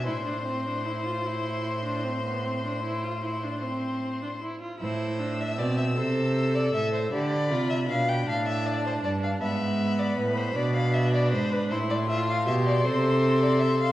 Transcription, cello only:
X:1
M:12/8
L:1/8
Q:3/8=52
K:Am
V:1 name="Cello" clef=bass
A,,8- A,,3 z | A,,2 B,, C,2 A,, D, C, B,, A,,2 G,, | ^G,,2 A,, B,,2 G,, A,,2 B,, C,3 |]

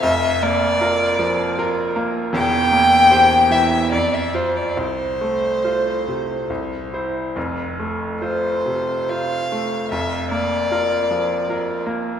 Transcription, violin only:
X:1
M:3/4
L:1/16
Q:1/4=74
K:F
V:1 name="Violin"
e2 d8 z2 | g6 e2 d e c d | c8- c2 z2 | z4 c4 f4 |
e2 d8 z2 |]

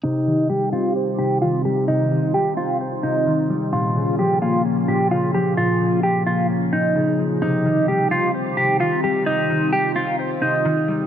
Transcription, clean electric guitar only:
X:1
M:4/4
L:1/8
Q:1/4=130
K:Cphr
V:1 name="Clean electric guitar"
E2 G F z G F G | E2 G F z E3 | F2 G F z G F G | F2 G F z E3 |
E2 G F z G F G | E2 G F z E3 |]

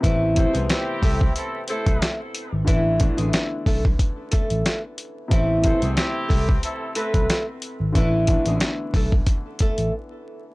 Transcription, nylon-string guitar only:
X:1
M:4/4
L:1/16
Q:"Swing 16ths" 1/4=91
K:Am
V:1 name="Nylon-string guitar"
[E,E]3 [^G,^G] z2 [A,A] z3 [A,A]3 z3 | [E,E]3 [^G,^G] z2 [A,A] z3 [A,A]3 z3 | [E,E]3 [^G,^G] z2 [A,A] z3 [A,A]3 z3 | [E,E]3 [^G,^G] z2 [A,A] z3 [A,A]2 z4 |]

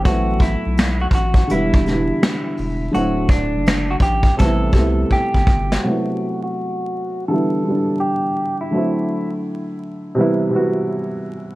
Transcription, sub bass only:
X:1
M:4/4
L:1/16
Q:"Swing 16ths" 1/4=83
K:Ador
V:1 name="Sub bass" clef=bass
A,,,3 B,,,3 A,,,2 E,,,4 z2 E,,,2 | D,,,3 F,,,3 A,,,2 A,,,2 C,,2 z G,,, G,,,2 | z16 | z16 |]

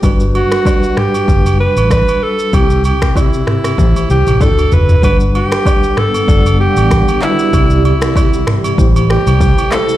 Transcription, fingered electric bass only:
X:1
M:4/4
L:1/16
Q:"Swing 16ths" 1/4=96
K:G
V:1 name="Fingered electric bass" clef=bass
G,,,3 z4 z F,,,3 A,,,2 z3 | C,,3 z4 z A,,, z C,, A,,, D,,2 F,,,2 | G,,,3 z4 z F,,,3 A,,,2 z3 | C,,3 z4 z A,,,3 C,,2 z3 |]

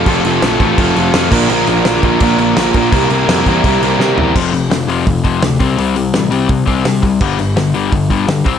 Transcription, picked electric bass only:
X:1
M:4/4
L:1/8
Q:1/4=168
K:Cmix
V:1 name="Picked electric bass" clef=bass
F,,, F,,, B,,, A,,, F,,, F,,, F,, B,,, | B,,, B,,, B,,, B,,, B,,, B,,, B,,, B,, | C,, C,, F,, E,, C,, C,, C, E,, | [K:Flyd] F,,,2 F,,,2 F,,,2 D,, C,, |
C,,2 A,,, C,, C,, C,, C, C,, | G,,,2 G,,,2 G,,,2 G,, C,, |]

